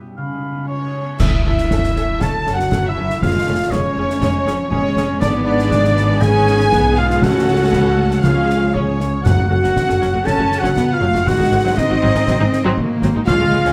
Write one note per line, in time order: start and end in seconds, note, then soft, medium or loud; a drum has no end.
0.00 0.20 B2 medium
0.00 0.20 G3 soft
0.00 0.50 B3 soft
0.00 0.20 E4 soft
0.00 0.20 G4 soft
0.17 1.22 C#3 medium
0.17 0.90 C#4 soft
0.17 0.65 F5 soft
0.17 0.65 B5 soft
0.34 1.21 G#3 soft
0.51 1.01 B3 soft
0.68 1.16 C#4 medium
0.68 1.22 F4 soft
0.68 1.16 C#5 medium
0.68 1.22 C#5 medium
0.68 1.16 C#5 medium
0.86 1.22 G#4 soft
1.02 1.22 B3 soft
1.19 1.29 F#1 medium
1.19 3.24 F#2 medium
1.19 1.28 C#4 medium
1.19 1.44 E4 medium
1.19 1.28 A4 medium
1.19 1.44 E5 medium
1.19 1.31 E5 medium
1.19 1.45 E5 medium
1.19 1.44 E5 medium
1.19 concert bass drum medium
1.19 snare medium
1.19 crash medium
1.45 1.54 F#1 medium
1.45 2.45 A3 medium
1.45 1.54 C#4 medium
1.45 2.20 E4 loud
1.45 1.54 A4 medium
1.45 2.19 E5 medium
1.45 2.22 E5 medium
1.45 2.20 E5 medium
1.45 2.24 E5 medium
1.58 snare medium
1.70 1.79 F#1 medium
1.70 1.79 C#4 medium
1.70 2.70 F#4 medium
1.70 1.80 A4 medium
1.70 concert bass drum medium
1.70 snare medium
1.83 snare medium
1.95 2.05 F#1 medium
1.95 2.95 C#4 medium
1.95 2.04 C#4 medium
1.95 2.04 A4 medium
1.95 snare soft
2.20 2.30 F#1 medium
2.20 3.24 C#3 medium
2.20 3.18 F#3 medium
2.20 2.30 C#4 medium
2.20 2.30 A4 medium
2.20 2.56 A4 medium
2.20 2.54 A5 medium
2.20 2.57 A5 medium
2.20 2.54 A5 medium
2.20 concert bass drum medium
2.20 snare medium
2.46 2.55 F#1 medium
2.46 3.24 A3 medium
2.46 2.55 C#4 medium
2.46 2.55 A4 medium
2.46 snare medium
2.54 2.88 F#4 medium
2.54 2.88 F#5 medium
2.54 2.89 F#5 medium
2.59 snare medium
2.71 2.81 F#1 medium
2.71 2.79 C#4 medium
2.71 3.24 F#4 medium
2.71 2.79 A4 medium
2.71 concert bass drum medium
2.71 snare medium
2.87 3.23 E4 loud
2.87 3.21 E5 medium
2.87 3.22 E5 medium
2.87 3.21 E5 medium
2.97 3.05 F#1 medium
2.97 3.95 C#4 medium
2.97 3.05 C#4 medium
2.97 3.05 A4 medium
3.10 snare medium
3.21 3.30 F1 medium
3.21 4.20 F2 medium
3.21 3.47 G#3 medium
3.21 3.30 C#4 medium
3.21 3.72 F4 loud
3.21 3.30 G#4 medium
3.21 3.71 F5 medium
3.21 3.73 F5 medium
3.21 3.71 F5 medium
3.21 3.73 F5 medium
3.21 concert bass drum medium
3.21 snare medium
3.46 3.56 F1 medium
3.46 4.44 G#3 medium
3.46 3.55 A3 medium
3.46 3.55 C#4 medium
3.46 3.55 G#4 medium
3.71 3.80 F1 medium
3.71 3.96 G#3 medium
3.71 3.80 C#4 medium
3.71 4.69 C#4 loud
3.71 4.69 G#4 medium
3.71 3.80 G#4 medium
3.71 4.71 C#5 medium
3.71 4.50 C#5 medium
3.71 4.70 C#5 medium
3.71 concert bass drum medium
3.71 snare medium
3.96 4.05 F1 medium
3.96 4.22 A3 medium
3.96 4.94 C#4 medium
3.96 4.06 C#4 medium
3.96 4.06 G#4 medium
4.10 snare medium
4.21 4.30 F1 medium
4.21 5.23 F2 medium
4.21 4.47 G#3 medium
4.21 4.30 C#4 medium
4.21 4.30 G#4 medium
4.21 concert bass drum medium
4.21 snare medium
4.45 4.55 F1 medium
4.45 4.72 F3 medium
4.45 5.44 G#3 medium
4.45 4.55 C#4 medium
4.45 4.55 G#4 medium
4.45 snare medium
4.70 4.80 F1 medium
4.70 5.21 G#3 medium
4.70 5.20 C#4 loud
4.70 4.80 C#4 medium
4.70 5.69 G#4 medium
4.70 4.80 G#4 medium
4.70 5.20 C#5 loud
4.70 5.20 C#5 medium
4.70 5.21 C#5 loud
4.70 concert bass drum medium
4.95 5.04 F1 medium
4.95 5.23 C#4 medium
4.95 5.05 C#4 medium
4.95 5.05 G#4 medium
4.95 snare medium
5.20 6.68 G#1 medium
5.20 6.20 G#2 medium
5.20 6.18 B3 medium
5.20 5.72 B3 loud
5.20 5.32 D4 loud
5.20 6.18 G#4 medium
5.20 5.45 D5 medium
5.20 5.30 D5 loud
5.20 5.28 D5 loud
5.20 concert bass drum medium
5.20 snare medium
5.45 6.45 G#3 medium
5.45 6.20 D4 loud
5.45 6.20 D5 loud
5.45 6.21 D5 loud
5.45 6.23 D5 loud
5.45 6.24 D5 loud
5.59 snare medium
5.70 5.97 G#3 medium
5.70 6.71 G#4 medium
5.70 concert bass drum medium
5.70 snare medium
5.84 snare medium
5.96 6.95 B3 medium
5.96 6.22 B3 medium
5.96 snare medium
6.21 7.24 G#2 medium
6.21 7.21 B3 medium
6.21 6.72 C#4 loud
6.21 6.96 G#4 loud
6.21 7.21 G#4 medium
6.21 6.97 G#5 loud
6.21 6.96 G#5 loud
6.21 6.99 G#5 loud
6.21 concert bass drum medium
6.21 snare medium
6.47 7.24 G#3 medium
6.47 snare medium
6.60 snare medium
6.72 7.23 B1 medium
6.72 6.97 B3 medium
6.72 7.24 G#4 medium
6.72 concert bass drum medium
6.72 snare medium
6.96 7.23 G#3 medium
6.96 7.24 B3 medium
6.96 7.23 F4 loud
6.96 7.23 F5 medium
6.96 7.22 F5 loud
6.96 7.24 F5 loud
6.96 7.23 F5 loud
7.10 snare medium
7.21 8.22 C#2 medium
7.21 7.94 C#3 loud
7.21 8.21 C#3 medium
7.21 7.73 A3 medium
7.21 8.22 C#4 medium
7.21 8.24 F#4 loud
7.21 8.24 A4 medium
7.21 7.95 F#5 loud
7.21 8.24 F#5 medium
7.21 7.94 F#5 medium
7.21 8.22 F#5 loud
7.21 concert bass drum medium
7.21 snare medium
7.47 8.47 C#4 medium
7.72 7.99 B3 medium
7.72 8.25 F#4 medium
7.72 concert bass drum medium
7.72 snare medium
7.97 8.23 A3 medium
7.97 8.25 A4 medium
8.11 snare medium
8.23 9.04 C#2 medium
8.23 9.27 C#3 medium
8.23 8.96 C#3 loud
8.23 8.99 F3 medium
8.23 8.73 C#4 medium
8.23 8.74 F4 loud
8.23 8.74 G#4 medium
8.23 8.76 F5 medium
8.23 8.75 F5 medium
8.23 8.71 F5 medium
8.23 8.75 F5 medium
8.23 concert bass drum medium
8.23 snare medium
8.49 8.99 C#4 medium
8.49 snare medium
8.74 8.83 C#4 medium
8.74 9.26 C#4 medium
8.74 9.27 G#4 medium
8.74 9.05 G#4 medium
8.74 9.26 C#5 medium
8.74 9.25 C#5 medium
8.74 9.26 C#5 medium
8.74 concert bass drum medium
9.00 10.00 C#4 soft
9.00 snare medium
9.23 9.31 F#1 medium
9.23 11.29 F#2 medium
9.23 9.98 F#2 loud
9.23 9.30 F#3 medium
9.23 9.30 C#4 medium
9.23 9.49 F#4 loud
9.23 9.49 F#5 medium
9.23 9.50 F#5 medium
9.23 concert bass drum medium
9.23 snare medium
9.23 crash soft
9.38 9.43 F#1 medium
9.38 9.43 A3 medium
9.38 9.43 F#4 medium
9.49 9.56 F#1 medium
9.49 10.50 A3 medium
9.49 9.56 C#4 medium
9.49 10.25 F#4 loud
9.49 9.56 A4 medium
9.49 10.27 F#5 medium
9.49 10.24 F#5 medium
9.49 10.27 F#5 loud
9.49 10.25 F#5 medium
9.62 9.69 F#1 medium
9.62 9.68 F#3 medium
9.62 9.68 C#4 medium
9.62 snare medium
9.76 10.75 F#4 medium
9.76 concert bass drum medium
9.76 snare medium
9.88 9.94 F#1 medium
9.88 9.93 C#4 medium
9.88 9.93 A4 medium
9.88 snare medium
10.01 10.06 F#1 medium
10.01 10.06 F#3 medium
10.01 10.06 C#4 loud
10.01 11.01 C#4 medium
10.01 snare soft
10.14 10.19 F#1 medium
10.14 10.19 A3 medium
10.14 10.19 F#4 medium
10.25 10.32 F#1 medium
10.25 11.28 C#3 medium
10.25 10.31 F#3 medium
10.25 10.31 C#4 medium
10.25 10.73 C#4 medium
10.25 10.59 A4 loud
10.25 10.61 A5 loud
10.25 10.60 A5 loud
10.25 10.59 A5 medium
10.25 concert bass drum medium
10.25 snare medium
10.39 10.44 F#1 medium
10.39 10.44 A3 medium
10.39 10.44 F#4 medium
10.51 11.29 A3 medium
10.51 snare medium
10.59 10.68 F#3 loud
10.59 10.93 F#4 loud
10.59 10.92 F#5 loud
10.59 10.93 F#5 medium
10.59 10.94 F#5 medium
10.59 10.93 F#5 medium
10.63 10.69 F#1 medium
10.63 10.69 C#4 medium
10.63 snare medium
10.77 11.02 B3 medium
10.77 11.76 F#4 medium
10.77 concert bass drum medium
10.77 snare medium
10.93 11.27 F4 loud
10.93 11.29 F5 medium
10.93 11.27 F5 medium
10.93 11.26 F5 medium
10.93 11.28 F5 medium
11.01 11.06 F#1 loud
11.01 11.06 F#3 medium
11.01 11.11 A3 medium
11.01 11.06 C#4 medium
11.01 11.29 C#4 medium
11.13 11.19 F#1 medium
11.13 11.18 A3 medium
11.13 11.19 F#4 medium
11.13 snare medium
11.25 11.32 G#1 medium
11.25 13.29 G#2 medium
11.25 11.31 F#3 medium
11.25 11.77 G#3 medium
11.25 11.31 C4 medium
11.25 11.76 F#4 loud
11.25 11.77 F#5 loud
11.25 11.77 F#5 medium
11.25 11.79 F#5 loud
11.25 11.76 F#5 loud
11.25 concert bass drum medium
11.25 snare medium
11.38 11.45 G#1 medium
11.38 11.43 G#3 medium
11.38 11.43 D#4 medium
11.50 11.57 G#1 medium
11.50 12.51 G#3 medium
11.50 11.56 C4 medium
11.50 11.56 F#4 medium
11.64 11.70 G#1 loud
11.64 11.69 F#3 loud
11.64 11.69 C4 medium
11.76 12.78 C4 loud
11.76 12.75 D#4 loud
11.76 12.76 F#4 medium
11.76 12.75 D#5 medium
11.76 12.77 D#5 loud
11.76 12.75 D#5 medium
11.76 12.77 D#5 loud
11.76 concert bass drum medium
11.76 snare medium
11.89 11.95 G#1 medium
11.89 11.95 C4 medium
11.89 11.94 F#4 medium
12.02 12.07 G#1 loud
12.02 12.07 F#3 loud
12.02 12.07 C4 loud
12.02 13.02 C4 medium
12.15 12.20 G#1 medium
12.15 12.20 G#3 medium
12.15 12.20 D#4 medium
12.15 snare medium
12.27 12.32 G#1 loud
12.27 13.29 D#3 medium
12.27 12.33 F#3 loud
12.27 12.33 C4 loud
12.27 concert bass drum medium
12.27 snare medium
12.40 12.45 G#1 medium
12.40 12.45 G#3 medium
12.40 12.45 D#4 medium
12.52 13.73 G#3 medium
12.52 snare medium
12.65 12.70 G#1 medium
12.65 12.70 F#3 loud
12.65 12.70 C4 loud
12.77 13.28 A#3 loud
12.77 13.29 F#4 medium
12.77 concert bass drum medium
13.02 13.08 G#1 loud
13.02 13.08 F#3 medium
13.02 13.29 C4 medium
13.02 13.08 C4 medium
13.02 snare medium
13.15 13.20 G#1 medium
13.15 13.20 G#3 medium
13.15 13.20 D#4 medium
13.26 13.33 C#2 loud
13.26 13.73 C#3 medium
13.26 13.32 F3 loud
13.26 13.73 G#3 loud
13.26 13.32 C#4 loud
13.26 13.73 F4 loud
13.26 13.73 F5 loud
13.26 concert bass drum loud
13.26 snare medium
13.40 13.45 C#2 medium
13.40 13.45 G#3 medium
13.40 13.45 F4 medium
13.52 13.58 C#2 medium
13.52 13.73 B3 medium
13.52 13.57 B3 medium
13.52 13.57 G#4 medium
13.64 13.71 C#2 loud
13.64 13.69 F3 loud
13.64 13.69 C#4 loud
13.64 snare medium